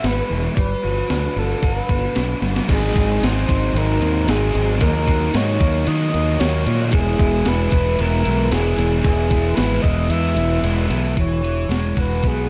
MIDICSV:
0, 0, Header, 1, 5, 480
1, 0, Start_track
1, 0, Tempo, 530504
1, 513, Time_signature, 4, 2, 24, 8
1, 11304, End_track
2, 0, Start_track
2, 0, Title_t, "Soft synth lead"
2, 0, Program_c, 0, 80
2, 54, Note_on_c, 0, 71, 97
2, 404, Note_off_c, 0, 71, 0
2, 527, Note_on_c, 0, 71, 102
2, 1254, Note_on_c, 0, 69, 84
2, 1268, Note_off_c, 0, 71, 0
2, 1502, Note_on_c, 0, 71, 101
2, 1516, Note_off_c, 0, 69, 0
2, 2211, Note_off_c, 0, 71, 0
2, 2463, Note_on_c, 0, 68, 92
2, 2934, Note_on_c, 0, 72, 94
2, 2948, Note_off_c, 0, 68, 0
2, 3415, Note_on_c, 0, 70, 106
2, 3429, Note_off_c, 0, 72, 0
2, 3890, Note_on_c, 0, 68, 91
2, 3903, Note_off_c, 0, 70, 0
2, 4242, Note_off_c, 0, 68, 0
2, 4352, Note_on_c, 0, 70, 108
2, 4854, Note_on_c, 0, 73, 101
2, 4868, Note_off_c, 0, 70, 0
2, 5317, Note_on_c, 0, 75, 116
2, 5330, Note_off_c, 0, 73, 0
2, 5787, Note_on_c, 0, 73, 100
2, 5800, Note_off_c, 0, 75, 0
2, 6148, Note_off_c, 0, 73, 0
2, 6272, Note_on_c, 0, 68, 108
2, 6765, Note_on_c, 0, 71, 104
2, 6778, Note_off_c, 0, 68, 0
2, 7240, Note_on_c, 0, 70, 112
2, 7254, Note_off_c, 0, 71, 0
2, 7707, Note_on_c, 0, 68, 100
2, 7721, Note_off_c, 0, 70, 0
2, 8066, Note_off_c, 0, 68, 0
2, 8175, Note_on_c, 0, 68, 105
2, 8639, Note_on_c, 0, 71, 107
2, 8653, Note_off_c, 0, 68, 0
2, 8885, Note_on_c, 0, 75, 101
2, 8898, Note_off_c, 0, 71, 0
2, 9138, Note_on_c, 0, 76, 119
2, 9152, Note_off_c, 0, 75, 0
2, 9623, Note_off_c, 0, 76, 0
2, 10126, Note_on_c, 0, 73, 98
2, 10805, Note_off_c, 0, 73, 0
2, 10855, Note_on_c, 0, 71, 84
2, 11105, Note_on_c, 0, 68, 98
2, 11119, Note_off_c, 0, 71, 0
2, 11304, Note_off_c, 0, 68, 0
2, 11304, End_track
3, 0, Start_track
3, 0, Title_t, "Overdriven electric guitar"
3, 0, Program_c, 1, 29
3, 0, Note_on_c, 1, 56, 68
3, 0, Note_on_c, 1, 66, 82
3, 39, Note_on_c, 1, 59, 70
3, 265, Note_on_c, 1, 52, 62
3, 492, Note_off_c, 1, 52, 0
3, 495, Note_on_c, 1, 55, 77
3, 512, Note_off_c, 1, 56, 0
3, 517, Note_off_c, 1, 59, 0
3, 523, Note_off_c, 1, 66, 0
3, 745, Note_on_c, 1, 66, 80
3, 985, Note_on_c, 1, 62, 65
3, 1226, Note_on_c, 1, 59, 69
3, 1461, Note_off_c, 1, 66, 0
3, 1472, Note_on_c, 1, 66, 77
3, 1705, Note_off_c, 1, 59, 0
3, 1708, Note_off_c, 1, 55, 0
3, 1716, Note_on_c, 1, 59, 73
3, 1936, Note_off_c, 1, 62, 0
3, 1947, Note_on_c, 1, 62, 72
3, 2194, Note_on_c, 1, 55, 66
3, 2422, Note_on_c, 1, 44, 104
3, 2433, Note_off_c, 1, 55, 0
3, 2433, Note_off_c, 1, 62, 0
3, 2436, Note_off_c, 1, 66, 0
3, 2437, Note_on_c, 1, 51, 105
3, 2438, Note_off_c, 1, 59, 0
3, 2441, Note_on_c, 1, 54, 99
3, 2446, Note_on_c, 1, 60, 110
3, 2455, Note_on_c, 1, 63, 123
3, 2658, Note_off_c, 1, 63, 0
3, 2662, Note_on_c, 1, 63, 80
3, 2664, Note_off_c, 1, 60, 0
3, 2675, Note_on_c, 1, 60, 71
3, 2688, Note_off_c, 1, 54, 0
3, 2691, Note_on_c, 1, 54, 65
3, 2890, Note_off_c, 1, 51, 0
3, 2901, Note_on_c, 1, 51, 77
3, 2907, Note_off_c, 1, 54, 0
3, 2910, Note_off_c, 1, 44, 0
3, 2910, Note_off_c, 1, 60, 0
3, 2911, Note_on_c, 1, 54, 77
3, 2921, Note_on_c, 1, 60, 82
3, 2922, Note_off_c, 1, 63, 0
3, 2925, Note_on_c, 1, 63, 90
3, 3130, Note_off_c, 1, 63, 0
3, 3133, Note_on_c, 1, 63, 78
3, 3139, Note_off_c, 1, 60, 0
3, 3150, Note_on_c, 1, 60, 70
3, 3157, Note_off_c, 1, 54, 0
3, 3161, Note_on_c, 1, 54, 61
3, 3365, Note_off_c, 1, 51, 0
3, 3368, Note_on_c, 1, 44, 91
3, 3376, Note_off_c, 1, 54, 0
3, 3376, Note_on_c, 1, 51, 106
3, 3383, Note_off_c, 1, 60, 0
3, 3387, Note_on_c, 1, 54, 91
3, 3392, Note_off_c, 1, 63, 0
3, 3394, Note_on_c, 1, 60, 103
3, 3403, Note_on_c, 1, 63, 109
3, 3599, Note_off_c, 1, 63, 0
3, 3610, Note_on_c, 1, 63, 85
3, 3618, Note_off_c, 1, 60, 0
3, 3629, Note_on_c, 1, 60, 78
3, 3633, Note_off_c, 1, 54, 0
3, 3644, Note_on_c, 1, 54, 72
3, 3844, Note_off_c, 1, 51, 0
3, 3852, Note_off_c, 1, 54, 0
3, 3854, Note_on_c, 1, 51, 80
3, 3862, Note_off_c, 1, 44, 0
3, 3863, Note_on_c, 1, 54, 84
3, 3869, Note_off_c, 1, 60, 0
3, 3875, Note_off_c, 1, 63, 0
3, 3880, Note_on_c, 1, 60, 90
3, 3886, Note_on_c, 1, 63, 87
3, 4082, Note_off_c, 1, 63, 0
3, 4093, Note_on_c, 1, 63, 67
3, 4099, Note_off_c, 1, 60, 0
3, 4110, Note_on_c, 1, 60, 69
3, 4113, Note_off_c, 1, 54, 0
3, 4124, Note_on_c, 1, 54, 63
3, 4324, Note_off_c, 1, 51, 0
3, 4329, Note_off_c, 1, 63, 0
3, 4333, Note_off_c, 1, 54, 0
3, 4335, Note_on_c, 1, 51, 95
3, 4338, Note_off_c, 1, 60, 0
3, 4344, Note_on_c, 1, 54, 106
3, 4356, Note_on_c, 1, 58, 119
3, 4361, Note_on_c, 1, 63, 113
3, 4555, Note_off_c, 1, 63, 0
3, 4566, Note_on_c, 1, 63, 76
3, 4574, Note_off_c, 1, 58, 0
3, 4585, Note_on_c, 1, 58, 70
3, 4589, Note_off_c, 1, 54, 0
3, 4599, Note_on_c, 1, 54, 65
3, 4791, Note_off_c, 1, 51, 0
3, 4802, Note_on_c, 1, 51, 84
3, 4803, Note_off_c, 1, 54, 0
3, 4812, Note_off_c, 1, 58, 0
3, 4814, Note_on_c, 1, 54, 78
3, 4821, Note_off_c, 1, 63, 0
3, 4823, Note_on_c, 1, 58, 79
3, 4832, Note_on_c, 1, 63, 84
3, 5031, Note_off_c, 1, 63, 0
3, 5041, Note_on_c, 1, 63, 79
3, 5047, Note_off_c, 1, 58, 0
3, 5055, Note_off_c, 1, 54, 0
3, 5058, Note_on_c, 1, 58, 66
3, 5066, Note_on_c, 1, 54, 61
3, 5282, Note_off_c, 1, 51, 0
3, 5292, Note_off_c, 1, 54, 0
3, 5293, Note_on_c, 1, 51, 99
3, 5301, Note_off_c, 1, 58, 0
3, 5303, Note_on_c, 1, 54, 107
3, 5312, Note_on_c, 1, 58, 108
3, 5313, Note_off_c, 1, 63, 0
3, 5324, Note_on_c, 1, 63, 97
3, 5530, Note_off_c, 1, 63, 0
3, 5541, Note_on_c, 1, 63, 86
3, 5542, Note_off_c, 1, 58, 0
3, 5552, Note_on_c, 1, 58, 80
3, 5558, Note_off_c, 1, 54, 0
3, 5569, Note_on_c, 1, 54, 67
3, 5765, Note_off_c, 1, 51, 0
3, 5776, Note_on_c, 1, 51, 81
3, 5779, Note_off_c, 1, 54, 0
3, 5787, Note_off_c, 1, 58, 0
3, 5789, Note_on_c, 1, 54, 87
3, 5793, Note_off_c, 1, 63, 0
3, 5798, Note_on_c, 1, 58, 97
3, 5804, Note_on_c, 1, 63, 87
3, 6006, Note_off_c, 1, 63, 0
3, 6017, Note_on_c, 1, 63, 79
3, 6023, Note_off_c, 1, 58, 0
3, 6033, Note_on_c, 1, 58, 72
3, 6039, Note_off_c, 1, 54, 0
3, 6050, Note_on_c, 1, 54, 59
3, 6248, Note_off_c, 1, 51, 0
3, 6249, Note_off_c, 1, 63, 0
3, 6252, Note_on_c, 1, 52, 101
3, 6257, Note_off_c, 1, 54, 0
3, 6257, Note_off_c, 1, 58, 0
3, 6261, Note_on_c, 1, 56, 115
3, 6275, Note_on_c, 1, 59, 103
3, 6283, Note_on_c, 1, 64, 110
3, 6496, Note_off_c, 1, 64, 0
3, 6500, Note_on_c, 1, 64, 74
3, 6510, Note_off_c, 1, 59, 0
3, 6513, Note_on_c, 1, 59, 69
3, 6526, Note_off_c, 1, 56, 0
3, 6530, Note_on_c, 1, 56, 64
3, 6727, Note_off_c, 1, 52, 0
3, 6731, Note_on_c, 1, 52, 77
3, 6742, Note_off_c, 1, 56, 0
3, 6746, Note_on_c, 1, 56, 85
3, 6755, Note_off_c, 1, 59, 0
3, 6758, Note_on_c, 1, 59, 85
3, 6763, Note_off_c, 1, 64, 0
3, 6767, Note_on_c, 1, 64, 88
3, 6968, Note_off_c, 1, 64, 0
3, 6972, Note_on_c, 1, 64, 74
3, 6984, Note_off_c, 1, 59, 0
3, 6988, Note_on_c, 1, 59, 79
3, 6996, Note_off_c, 1, 56, 0
3, 7000, Note_on_c, 1, 56, 66
3, 7217, Note_off_c, 1, 52, 0
3, 7221, Note_on_c, 1, 52, 95
3, 7229, Note_off_c, 1, 56, 0
3, 7233, Note_on_c, 1, 56, 105
3, 7240, Note_off_c, 1, 59, 0
3, 7244, Note_on_c, 1, 59, 109
3, 7246, Note_off_c, 1, 64, 0
3, 7250, Note_on_c, 1, 64, 107
3, 7443, Note_off_c, 1, 64, 0
3, 7447, Note_on_c, 1, 64, 85
3, 7455, Note_off_c, 1, 59, 0
3, 7459, Note_on_c, 1, 59, 70
3, 7470, Note_off_c, 1, 56, 0
3, 7473, Note_on_c, 1, 56, 72
3, 7679, Note_off_c, 1, 52, 0
3, 7683, Note_on_c, 1, 52, 82
3, 7692, Note_off_c, 1, 56, 0
3, 7695, Note_on_c, 1, 56, 89
3, 7701, Note_off_c, 1, 59, 0
3, 7705, Note_on_c, 1, 59, 91
3, 7708, Note_off_c, 1, 64, 0
3, 7712, Note_on_c, 1, 64, 83
3, 7929, Note_off_c, 1, 64, 0
3, 7933, Note_on_c, 1, 64, 72
3, 7940, Note_off_c, 1, 59, 0
3, 7943, Note_on_c, 1, 59, 65
3, 7958, Note_off_c, 1, 56, 0
3, 7961, Note_on_c, 1, 56, 58
3, 8166, Note_off_c, 1, 52, 0
3, 8169, Note_on_c, 1, 52, 98
3, 8172, Note_off_c, 1, 56, 0
3, 8175, Note_off_c, 1, 59, 0
3, 8182, Note_on_c, 1, 56, 108
3, 8185, Note_off_c, 1, 64, 0
3, 8186, Note_on_c, 1, 59, 109
3, 8196, Note_on_c, 1, 64, 111
3, 8398, Note_off_c, 1, 64, 0
3, 8409, Note_on_c, 1, 64, 73
3, 8418, Note_off_c, 1, 59, 0
3, 8425, Note_off_c, 1, 56, 0
3, 8429, Note_on_c, 1, 59, 67
3, 8436, Note_on_c, 1, 56, 62
3, 8647, Note_off_c, 1, 52, 0
3, 8657, Note_on_c, 1, 52, 80
3, 8658, Note_off_c, 1, 56, 0
3, 8669, Note_off_c, 1, 59, 0
3, 8669, Note_on_c, 1, 56, 77
3, 8680, Note_off_c, 1, 64, 0
3, 8680, Note_on_c, 1, 59, 87
3, 8691, Note_on_c, 1, 64, 86
3, 8879, Note_off_c, 1, 64, 0
3, 8890, Note_on_c, 1, 64, 81
3, 8899, Note_off_c, 1, 59, 0
3, 8908, Note_off_c, 1, 56, 0
3, 8910, Note_on_c, 1, 59, 73
3, 8919, Note_on_c, 1, 56, 60
3, 9118, Note_off_c, 1, 52, 0
3, 9129, Note_on_c, 1, 52, 97
3, 9136, Note_off_c, 1, 56, 0
3, 9147, Note_off_c, 1, 59, 0
3, 9147, Note_on_c, 1, 56, 94
3, 9152, Note_off_c, 1, 64, 0
3, 9158, Note_on_c, 1, 59, 102
3, 9163, Note_on_c, 1, 64, 108
3, 9361, Note_off_c, 1, 64, 0
3, 9372, Note_on_c, 1, 64, 78
3, 9378, Note_off_c, 1, 59, 0
3, 9387, Note_off_c, 1, 56, 0
3, 9389, Note_on_c, 1, 59, 73
3, 9398, Note_on_c, 1, 56, 61
3, 9596, Note_off_c, 1, 52, 0
3, 9607, Note_on_c, 1, 52, 78
3, 9609, Note_off_c, 1, 56, 0
3, 9618, Note_off_c, 1, 59, 0
3, 9620, Note_on_c, 1, 56, 78
3, 9625, Note_off_c, 1, 64, 0
3, 9629, Note_on_c, 1, 59, 86
3, 9636, Note_on_c, 1, 64, 85
3, 9825, Note_off_c, 1, 64, 0
3, 9835, Note_on_c, 1, 64, 66
3, 9842, Note_off_c, 1, 59, 0
3, 9852, Note_on_c, 1, 59, 73
3, 9855, Note_off_c, 1, 56, 0
3, 9866, Note_on_c, 1, 56, 59
3, 10078, Note_off_c, 1, 64, 0
3, 10084, Note_off_c, 1, 52, 0
3, 10086, Note_off_c, 1, 59, 0
3, 10093, Note_off_c, 1, 56, 0
3, 10094, Note_on_c, 1, 52, 73
3, 10323, Note_off_c, 1, 52, 0
3, 10334, Note_on_c, 1, 52, 62
3, 10575, Note_on_c, 1, 56, 67
3, 10826, Note_on_c, 1, 66, 69
3, 11073, Note_on_c, 1, 59, 72
3, 11303, Note_off_c, 1, 56, 0
3, 11304, Note_off_c, 1, 52, 0
3, 11304, Note_off_c, 1, 59, 0
3, 11304, Note_off_c, 1, 66, 0
3, 11304, End_track
4, 0, Start_track
4, 0, Title_t, "Fingered electric bass"
4, 0, Program_c, 2, 33
4, 35, Note_on_c, 2, 32, 96
4, 184, Note_off_c, 2, 32, 0
4, 278, Note_on_c, 2, 28, 88
4, 427, Note_off_c, 2, 28, 0
4, 515, Note_on_c, 2, 31, 93
4, 665, Note_off_c, 2, 31, 0
4, 765, Note_on_c, 2, 31, 85
4, 912, Note_off_c, 2, 31, 0
4, 998, Note_on_c, 2, 38, 86
4, 1147, Note_off_c, 2, 38, 0
4, 1233, Note_on_c, 2, 31, 75
4, 1384, Note_off_c, 2, 31, 0
4, 1470, Note_on_c, 2, 31, 93
4, 1622, Note_off_c, 2, 31, 0
4, 1712, Note_on_c, 2, 31, 84
4, 1864, Note_off_c, 2, 31, 0
4, 1960, Note_on_c, 2, 35, 86
4, 2109, Note_off_c, 2, 35, 0
4, 2188, Note_on_c, 2, 31, 80
4, 2341, Note_off_c, 2, 31, 0
4, 2432, Note_on_c, 2, 32, 91
4, 2650, Note_off_c, 2, 32, 0
4, 2671, Note_on_c, 2, 32, 89
4, 2889, Note_off_c, 2, 32, 0
4, 2915, Note_on_c, 2, 32, 91
4, 3131, Note_off_c, 2, 32, 0
4, 3153, Note_on_c, 2, 32, 83
4, 3370, Note_off_c, 2, 32, 0
4, 3380, Note_on_c, 2, 32, 96
4, 3603, Note_off_c, 2, 32, 0
4, 3622, Note_on_c, 2, 39, 88
4, 3843, Note_off_c, 2, 39, 0
4, 3870, Note_on_c, 2, 32, 99
4, 4088, Note_off_c, 2, 32, 0
4, 4114, Note_on_c, 2, 32, 88
4, 4330, Note_off_c, 2, 32, 0
4, 4353, Note_on_c, 2, 39, 105
4, 4783, Note_off_c, 2, 39, 0
4, 4835, Note_on_c, 2, 44, 98
4, 5049, Note_off_c, 2, 44, 0
4, 5068, Note_on_c, 2, 39, 83
4, 5285, Note_off_c, 2, 39, 0
4, 5314, Note_on_c, 2, 51, 98
4, 5528, Note_off_c, 2, 51, 0
4, 5557, Note_on_c, 2, 39, 94
4, 5769, Note_off_c, 2, 39, 0
4, 5795, Note_on_c, 2, 39, 98
4, 6008, Note_off_c, 2, 39, 0
4, 6030, Note_on_c, 2, 46, 99
4, 6245, Note_off_c, 2, 46, 0
4, 6267, Note_on_c, 2, 28, 104
4, 6483, Note_off_c, 2, 28, 0
4, 6507, Note_on_c, 2, 28, 92
4, 6722, Note_off_c, 2, 28, 0
4, 6753, Note_on_c, 2, 28, 99
4, 6965, Note_off_c, 2, 28, 0
4, 6986, Note_on_c, 2, 28, 84
4, 7201, Note_off_c, 2, 28, 0
4, 7232, Note_on_c, 2, 28, 92
4, 7444, Note_off_c, 2, 28, 0
4, 7478, Note_on_c, 2, 35, 92
4, 7688, Note_off_c, 2, 35, 0
4, 7700, Note_on_c, 2, 28, 98
4, 7918, Note_off_c, 2, 28, 0
4, 7940, Note_on_c, 2, 28, 101
4, 8157, Note_off_c, 2, 28, 0
4, 8186, Note_on_c, 2, 28, 103
4, 8616, Note_off_c, 2, 28, 0
4, 8670, Note_on_c, 2, 32, 97
4, 8883, Note_off_c, 2, 32, 0
4, 8900, Note_on_c, 2, 28, 85
4, 9117, Note_off_c, 2, 28, 0
4, 9131, Note_on_c, 2, 40, 100
4, 9353, Note_off_c, 2, 40, 0
4, 9374, Note_on_c, 2, 28, 91
4, 9595, Note_off_c, 2, 28, 0
4, 9615, Note_on_c, 2, 28, 94
4, 9836, Note_off_c, 2, 28, 0
4, 9862, Note_on_c, 2, 35, 93
4, 10080, Note_off_c, 2, 35, 0
4, 10108, Note_on_c, 2, 28, 87
4, 10554, Note_off_c, 2, 28, 0
4, 10576, Note_on_c, 2, 28, 83
4, 10805, Note_off_c, 2, 28, 0
4, 10825, Note_on_c, 2, 28, 81
4, 11050, Note_off_c, 2, 28, 0
4, 11073, Note_on_c, 2, 35, 90
4, 11296, Note_off_c, 2, 35, 0
4, 11304, End_track
5, 0, Start_track
5, 0, Title_t, "Drums"
5, 33, Note_on_c, 9, 46, 55
5, 39, Note_on_c, 9, 38, 108
5, 124, Note_off_c, 9, 46, 0
5, 129, Note_off_c, 9, 38, 0
5, 514, Note_on_c, 9, 46, 60
5, 516, Note_on_c, 9, 36, 105
5, 605, Note_off_c, 9, 46, 0
5, 606, Note_off_c, 9, 36, 0
5, 991, Note_on_c, 9, 46, 54
5, 997, Note_on_c, 9, 38, 107
5, 1082, Note_off_c, 9, 46, 0
5, 1087, Note_off_c, 9, 38, 0
5, 1471, Note_on_c, 9, 46, 56
5, 1472, Note_on_c, 9, 36, 104
5, 1561, Note_off_c, 9, 46, 0
5, 1562, Note_off_c, 9, 36, 0
5, 1712, Note_on_c, 9, 36, 71
5, 1802, Note_off_c, 9, 36, 0
5, 1948, Note_on_c, 9, 46, 58
5, 1953, Note_on_c, 9, 38, 116
5, 2038, Note_off_c, 9, 46, 0
5, 2044, Note_off_c, 9, 38, 0
5, 2193, Note_on_c, 9, 38, 60
5, 2283, Note_off_c, 9, 38, 0
5, 2319, Note_on_c, 9, 38, 85
5, 2409, Note_off_c, 9, 38, 0
5, 2434, Note_on_c, 9, 36, 115
5, 2436, Note_on_c, 9, 49, 124
5, 2436, Note_on_c, 9, 57, 89
5, 2524, Note_off_c, 9, 36, 0
5, 2526, Note_off_c, 9, 49, 0
5, 2526, Note_off_c, 9, 57, 0
5, 2676, Note_on_c, 9, 36, 90
5, 2683, Note_on_c, 9, 57, 61
5, 2767, Note_off_c, 9, 36, 0
5, 2773, Note_off_c, 9, 57, 0
5, 2924, Note_on_c, 9, 57, 80
5, 2929, Note_on_c, 9, 38, 114
5, 3015, Note_off_c, 9, 57, 0
5, 3020, Note_off_c, 9, 38, 0
5, 3157, Note_on_c, 9, 36, 89
5, 3164, Note_on_c, 9, 57, 61
5, 3247, Note_off_c, 9, 36, 0
5, 3255, Note_off_c, 9, 57, 0
5, 3405, Note_on_c, 9, 57, 80
5, 3495, Note_off_c, 9, 57, 0
5, 3636, Note_on_c, 9, 57, 66
5, 3726, Note_off_c, 9, 57, 0
5, 3873, Note_on_c, 9, 57, 90
5, 3878, Note_on_c, 9, 38, 114
5, 3963, Note_off_c, 9, 57, 0
5, 3968, Note_off_c, 9, 38, 0
5, 4116, Note_on_c, 9, 57, 72
5, 4207, Note_off_c, 9, 57, 0
5, 4348, Note_on_c, 9, 57, 94
5, 4353, Note_on_c, 9, 36, 121
5, 4439, Note_off_c, 9, 57, 0
5, 4443, Note_off_c, 9, 36, 0
5, 4592, Note_on_c, 9, 36, 94
5, 4593, Note_on_c, 9, 57, 67
5, 4683, Note_off_c, 9, 36, 0
5, 4683, Note_off_c, 9, 57, 0
5, 4831, Note_on_c, 9, 57, 92
5, 4837, Note_on_c, 9, 38, 123
5, 4922, Note_off_c, 9, 57, 0
5, 4927, Note_off_c, 9, 38, 0
5, 5070, Note_on_c, 9, 57, 64
5, 5073, Note_on_c, 9, 36, 90
5, 5161, Note_off_c, 9, 57, 0
5, 5163, Note_off_c, 9, 36, 0
5, 5308, Note_on_c, 9, 57, 92
5, 5398, Note_off_c, 9, 57, 0
5, 5556, Note_on_c, 9, 57, 68
5, 5646, Note_off_c, 9, 57, 0
5, 5793, Note_on_c, 9, 57, 90
5, 5798, Note_on_c, 9, 38, 120
5, 5883, Note_off_c, 9, 57, 0
5, 5889, Note_off_c, 9, 38, 0
5, 6029, Note_on_c, 9, 57, 67
5, 6120, Note_off_c, 9, 57, 0
5, 6258, Note_on_c, 9, 57, 98
5, 6268, Note_on_c, 9, 36, 124
5, 6348, Note_off_c, 9, 57, 0
5, 6359, Note_off_c, 9, 36, 0
5, 6509, Note_on_c, 9, 57, 62
5, 6510, Note_on_c, 9, 36, 96
5, 6514, Note_on_c, 9, 38, 36
5, 6599, Note_off_c, 9, 57, 0
5, 6600, Note_off_c, 9, 36, 0
5, 6605, Note_off_c, 9, 38, 0
5, 6743, Note_on_c, 9, 57, 83
5, 6748, Note_on_c, 9, 38, 124
5, 6834, Note_off_c, 9, 57, 0
5, 6839, Note_off_c, 9, 38, 0
5, 6979, Note_on_c, 9, 57, 63
5, 6986, Note_on_c, 9, 36, 91
5, 7069, Note_off_c, 9, 57, 0
5, 7077, Note_off_c, 9, 36, 0
5, 7228, Note_on_c, 9, 57, 79
5, 7318, Note_off_c, 9, 57, 0
5, 7467, Note_on_c, 9, 57, 63
5, 7558, Note_off_c, 9, 57, 0
5, 7705, Note_on_c, 9, 57, 90
5, 7710, Note_on_c, 9, 38, 113
5, 7795, Note_off_c, 9, 57, 0
5, 7801, Note_off_c, 9, 38, 0
5, 7948, Note_on_c, 9, 57, 69
5, 7954, Note_on_c, 9, 38, 35
5, 8039, Note_off_c, 9, 57, 0
5, 8044, Note_off_c, 9, 38, 0
5, 8183, Note_on_c, 9, 57, 91
5, 8184, Note_on_c, 9, 36, 124
5, 8273, Note_off_c, 9, 57, 0
5, 8275, Note_off_c, 9, 36, 0
5, 8423, Note_on_c, 9, 36, 95
5, 8423, Note_on_c, 9, 57, 71
5, 8513, Note_off_c, 9, 36, 0
5, 8513, Note_off_c, 9, 57, 0
5, 8659, Note_on_c, 9, 57, 95
5, 8664, Note_on_c, 9, 38, 125
5, 8749, Note_off_c, 9, 57, 0
5, 8754, Note_off_c, 9, 38, 0
5, 8902, Note_on_c, 9, 36, 81
5, 8902, Note_on_c, 9, 57, 67
5, 8992, Note_off_c, 9, 57, 0
5, 8993, Note_off_c, 9, 36, 0
5, 9138, Note_on_c, 9, 57, 90
5, 9229, Note_off_c, 9, 57, 0
5, 9380, Note_on_c, 9, 57, 69
5, 9470, Note_off_c, 9, 57, 0
5, 9624, Note_on_c, 9, 57, 92
5, 9714, Note_off_c, 9, 57, 0
5, 9866, Note_on_c, 9, 57, 68
5, 9957, Note_off_c, 9, 57, 0
5, 10107, Note_on_c, 9, 36, 104
5, 10107, Note_on_c, 9, 42, 83
5, 10197, Note_off_c, 9, 36, 0
5, 10198, Note_off_c, 9, 42, 0
5, 10355, Note_on_c, 9, 42, 66
5, 10445, Note_off_c, 9, 42, 0
5, 10595, Note_on_c, 9, 42, 81
5, 10600, Note_on_c, 9, 38, 111
5, 10686, Note_off_c, 9, 42, 0
5, 10691, Note_off_c, 9, 38, 0
5, 10831, Note_on_c, 9, 36, 82
5, 10832, Note_on_c, 9, 42, 58
5, 10921, Note_off_c, 9, 36, 0
5, 10923, Note_off_c, 9, 42, 0
5, 11065, Note_on_c, 9, 42, 75
5, 11071, Note_on_c, 9, 36, 81
5, 11155, Note_off_c, 9, 42, 0
5, 11161, Note_off_c, 9, 36, 0
5, 11304, End_track
0, 0, End_of_file